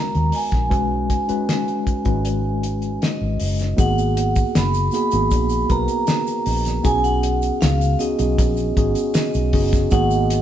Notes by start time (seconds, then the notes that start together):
Already playing: G#3 B3 D#4 F#4 A#4 A#5
0.15 D#2, closed hi-hat
0.32 G#5, open hi-hat
0.52 A#1, kick, snare, closed hi-hat
0.69 B1 G#3 C#4 D#4 F#4 B4, kick, closed hi-hat
1.10 kick, closed hi-hat
1.28 G#3 C#4 D#4 F#4 B4, muted fingered electric bass stroke, closed hi-hat
1.49 snare, closed hi-hat
1.68 closed hi-hat
1.87 muted fingered electric bass stroke, kick, closed hi-hat
2.04 G#1 G#3 C#4 D#4 F#4 B4, kick, closed hi-hat
2.25 closed hi-hat
2.63 closed hi-hat
2.82 closed hi-hat
3.02 D#5, snare, closed hi-hat
3.21 G#1
3.40 F#1, open hi-hat
3.59 snare, closed hi-hat
3.77 G#1 A#3 B3 D#4 F#4 G#4 F#5, kick, closed hi-hat, shaker
3.98 closed hi-hat, shaker
4.17 closed hi-hat
4.35 kick, closed hi-hat, shaker
4.55 F#1 B5, snare, closed hi-hat, shaker
4.74 closed hi-hat, shaker
4.91 A#3 B3 D#4 F#4 G#4 B5, closed hi-hat, shaker
5.11 G#1 A#3 B3 D#4 F#4 G#4, closed hi-hat, shaker
5.30 A#1, kick, closed hi-hat, shaker
5.49 closed hi-hat, shaker
5.69 B1 B3 D#4 F#4 A#4 B4 A#5, kick, closed hi-hat
5.88 closed hi-hat, shaker
6.07 snare, closed hi-hat, shaker
6.27 closed hi-hat, shaker
6.46 A#1, open hi-hat
6.65 snare, closed hi-hat, shaker
6.83 B1 B3 C#4 D#4 F#4 G#4 G#5, kick, closed hi-hat, shaker
6.98 G#5
7.04 F#5, closed hi-hat, shaker
7.23 closed hi-hat
7.42 closed hi-hat, shaker
7.61 C#2 F5, snare, closed hi-hat, shaker
7.81 closed hi-hat, shaker
7.99 B3 C#4 D#4 F#4 G#4 D#5, closed hi-hat, shaker
8.18 B1 B3 C#4 D#4 F#4 G#4, closed hi-hat, shaker
8.38 A#1, kick, closed hi-hat, shaker
8.57 closed hi-hat, shaker
8.77 G#1 B3 C#4 D#4 F#4 G#4, kick, closed hi-hat
8.95 closed hi-hat, shaker
9.14 D#5, snare, closed hi-hat, shaker
9.34 B1, closed hi-hat, shaker
9.53 F#1 B3 C#4 D#4 F#4 G#4, kick, open hi-hat
9.73 kick, snare, closed hi-hat, shaker
9.90 G#1 G#3 A#3 B3 D#4 F#4 G#4 D#5 F#5, kick, closed hi-hat, shaker
10.11 shaker
10.30 closed hi-hat